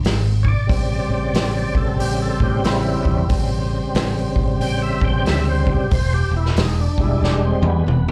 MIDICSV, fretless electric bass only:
0, 0, Header, 1, 2, 480
1, 0, Start_track
1, 0, Tempo, 652884
1, 511, Time_signature, 4, 2, 24, 8
1, 5968, End_track
2, 0, Start_track
2, 0, Title_t, "Fretless electric bass"
2, 0, Program_c, 0, 35
2, 24, Note_on_c, 0, 32, 84
2, 387, Note_off_c, 0, 32, 0
2, 508, Note_on_c, 0, 33, 82
2, 733, Note_off_c, 0, 33, 0
2, 801, Note_on_c, 0, 33, 82
2, 941, Note_off_c, 0, 33, 0
2, 984, Note_on_c, 0, 33, 85
2, 1211, Note_off_c, 0, 33, 0
2, 1282, Note_on_c, 0, 33, 85
2, 1421, Note_off_c, 0, 33, 0
2, 1463, Note_on_c, 0, 33, 85
2, 1690, Note_off_c, 0, 33, 0
2, 1766, Note_on_c, 0, 45, 91
2, 1903, Note_off_c, 0, 45, 0
2, 1939, Note_on_c, 0, 33, 92
2, 2167, Note_off_c, 0, 33, 0
2, 2244, Note_on_c, 0, 40, 80
2, 2382, Note_off_c, 0, 40, 0
2, 2424, Note_on_c, 0, 33, 91
2, 2787, Note_off_c, 0, 33, 0
2, 2902, Note_on_c, 0, 33, 93
2, 3129, Note_off_c, 0, 33, 0
2, 3203, Note_on_c, 0, 33, 84
2, 3341, Note_off_c, 0, 33, 0
2, 3385, Note_on_c, 0, 33, 81
2, 3611, Note_off_c, 0, 33, 0
2, 3687, Note_on_c, 0, 33, 94
2, 3824, Note_off_c, 0, 33, 0
2, 3862, Note_on_c, 0, 38, 85
2, 4226, Note_off_c, 0, 38, 0
2, 4348, Note_on_c, 0, 28, 88
2, 4573, Note_off_c, 0, 28, 0
2, 4641, Note_on_c, 0, 28, 93
2, 4780, Note_off_c, 0, 28, 0
2, 4825, Note_on_c, 0, 28, 92
2, 5051, Note_off_c, 0, 28, 0
2, 5130, Note_on_c, 0, 28, 72
2, 5267, Note_off_c, 0, 28, 0
2, 5300, Note_on_c, 0, 28, 80
2, 5529, Note_off_c, 0, 28, 0
2, 5600, Note_on_c, 0, 40, 88
2, 5741, Note_off_c, 0, 40, 0
2, 5783, Note_on_c, 0, 28, 88
2, 5968, Note_off_c, 0, 28, 0
2, 5968, End_track
0, 0, End_of_file